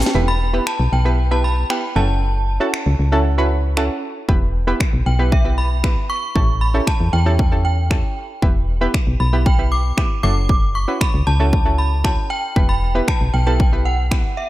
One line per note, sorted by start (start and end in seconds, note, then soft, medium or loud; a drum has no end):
0.00 0.25 G5 loud
0.00 shaker medium
0.06 snare loud
0.15 0.60 E1 loud
0.15 0.47 B3 medium
0.15 0.47 E4 medium
0.15 0.47 G4 medium
0.15 0.47 B4 medium
0.28 0.68 B5 loud
0.53 0.96 B3 medium
0.53 0.97 E4 medium
0.53 0.97 G4 medium
0.53 0.97 B4 medium
0.67 0.93 A5 medium
0.67 finger snap loud
0.80 0.89 B1 loud
0.93 1.65 B1 medium
0.93 1.33 G5 medium
1.05 1.27 B3 medium
1.05 1.27 E4 medium
1.05 1.27 G4 medium
1.05 1.27 B4 medium
1.31 1.63 B3 medium
1.31 1.63 E4 medium
1.31 1.63 G4 medium
1.31 1.64 B4 medium
1.31 1.45 A5 medium
1.44 1.71 B5 medium
1.70 1.96 B3 medium
1.70 1.95 E4 medium
1.70 1.96 G4 medium
1.70 1.96 B4 medium
1.70 1.94 G5 medium
1.70 finger snap loud
1.96 2.59 F#1 loud
1.96 2.49 C#4 medium
1.96 2.50 E4 medium
1.96 2.50 F#4 medium
1.96 2.50 A4 medium
1.96 3.47 A5 medium
2.60 3.03 C#4 medium
2.60 3.03 E4 medium
2.60 3.03 F#4 medium
2.60 3.04 A4 loud
2.74 finger snap loud
2.86 2.95 C#2 loud
2.99 3.90 C#2 medium
3.12 3.34 C#4 medium
3.12 3.34 E4 medium
3.12 3.34 F#4 medium
3.12 3.34 A4 loud
3.38 3.70 C#4 medium
3.38 3.70 E4 medium
3.38 3.70 F#4 medium
3.38 3.70 B4 loud
3.77 4.20 C#4 medium
3.77 4.20 E4 medium
3.77 4.20 F#4 medium
3.77 4.20 A4 loud
3.77 finger snap loud
4.28 4.74 E1 loud
4.28 4.61 B3 medium
4.28 4.61 E4 medium
4.28 4.61 G4 medium
4.28 4.61 B4 loud
4.28 kick loud
4.67 5.10 B3 medium
4.67 5.10 E4 medium
4.67 5.10 G4 medium
4.67 5.10 B4 medium
4.80 finger snap loud
4.80 kick loud
4.93 5.02 B1 medium
5.06 5.97 B1 medium
5.06 5.33 G5 medium
5.19 5.41 B3 medium
5.19 5.41 E4 medium
5.19 5.41 G4 medium
5.19 5.41 B4 medium
5.32 5.44 E5 medium
5.32 kick loud
5.45 5.77 B3 medium
5.45 5.77 E4 medium
5.45 5.77 G4 medium
5.45 5.77 B4 medium
5.58 6.11 B5 loud
5.84 6.27 B3 medium
5.84 6.27 E4 medium
5.84 6.27 G4 medium
5.84 6.27 B4 medium
5.84 finger snap loud
5.84 kick loud
6.10 6.63 C#6 loud
6.35 6.81 A1 loud
6.35 6.68 C#4 medium
6.35 6.68 E4 medium
6.35 6.68 G4 medium
6.35 6.68 A4 medium
6.35 kick loud
6.61 6.88 B5 medium
6.74 7.17 C#4 medium
6.74 7.17 E4 medium
6.74 7.17 G4 medium
6.74 7.17 A4 medium
6.87 7.14 A5 medium
6.87 finger snap loud
6.87 kick loud
7.00 7.09 E2 loud
7.13 8.04 E2 medium
7.13 7.64 G5 medium
7.26 7.47 C#4 medium
7.26 7.47 E4 medium
7.26 7.48 G4 medium
7.26 7.48 A4 medium
7.39 kick loud
7.52 7.84 C#4 medium
7.52 7.84 E4 medium
7.52 7.84 G4 medium
7.52 7.84 A4 medium
7.65 8.13 G5 medium
7.90 8.34 C#4 medium
7.90 8.34 E4 medium
7.90 8.34 G4 medium
7.90 8.34 A4 medium
7.90 finger snap loud
7.90 kick loud
8.42 8.88 E1 loud
8.42 8.75 B3 medium
8.42 8.75 E4 medium
8.42 8.75 G4 medium
8.42 8.75 B4 loud
8.42 kick loud
8.81 9.24 B3 medium
8.81 9.24 E4 medium
8.81 9.24 G4 medium
8.81 9.24 B4 medium
8.94 finger snap loud
8.94 kick loud
9.07 9.16 B1 loud
9.20 9.92 B1 medium
9.20 9.47 B5 medium
9.33 9.54 B3 medium
9.33 9.54 E4 medium
9.33 9.55 G4 medium
9.33 9.55 B4 medium
9.46 9.57 G5 medium
9.46 kick loud
9.59 9.91 B3 medium
9.59 9.91 E4 medium
9.59 9.91 G4 medium
9.59 9.91 B4 medium
9.72 10.22 D6 loud
9.97 10.23 B3 medium
9.97 10.22 E4 medium
9.97 10.24 G4 medium
9.97 10.24 B4 medium
9.97 finger snap loud
9.97 kick loud
10.23 10.87 F#1 loud
10.23 10.77 C#4 medium
10.23 10.77 E4 medium
10.23 10.77 F#4 medium
10.23 10.77 A4 medium
10.23 10.77 D6 loud
10.49 kick loud
10.75 11.02 C#6 medium
10.88 11.31 C#4 medium
10.88 11.31 E4 medium
10.88 11.31 F#4 medium
10.88 11.31 B4 medium
11.01 11.13 B5 medium
11.01 finger snap loud
11.01 kick loud
11.14 11.23 C#2 loud
11.27 12.17 C#2 medium
11.27 11.75 A5 loud
11.40 11.61 C#4 medium
11.40 11.61 E4 medium
11.40 11.61 F#4 medium
11.40 11.61 A4 medium
11.53 kick loud
11.65 11.98 C#4 medium
11.65 11.98 E4 medium
11.65 11.98 F#4 medium
11.65 11.98 A4 medium
11.78 12.05 B5 medium
12.04 12.47 C#4 medium
12.04 12.47 E4 medium
12.04 12.47 F#4 medium
12.04 12.48 A4 medium
12.04 12.16 A5 medium
12.04 finger snap loud
12.04 kick loud
12.30 12.70 G5 medium
12.56 13.01 E1 loud
12.56 12.88 B3 medium
12.56 12.88 E4 medium
12.56 12.88 G4 medium
12.56 12.89 B4 medium
12.56 kick loud
12.69 13.05 B5 loud
12.95 13.38 B3 medium
12.95 13.38 E4 medium
12.95 13.38 G4 medium
12.95 13.38 B4 medium
13.08 13.35 A5 medium
13.08 finger snap loud
13.08 kick loud
13.21 13.30 B1 medium
13.34 14.24 B1 medium
13.34 13.39 G5 medium
13.46 13.68 B3 medium
13.46 13.68 E4 medium
13.46 13.68 G4 medium
13.46 13.68 A4 medium
13.46 13.87 G5 medium
13.60 kick loud
13.72 14.05 B3 medium
13.72 14.05 E4 medium
13.72 14.05 G4 medium
13.72 14.05 B4 medium
13.85 14.39 F#5 medium
14.11 14.49 B3 medium
14.11 14.49 E4 medium
14.11 14.49 G4 medium
14.11 14.49 B4 medium
14.11 finger snap loud
14.11 kick loud
14.37 14.49 E5 medium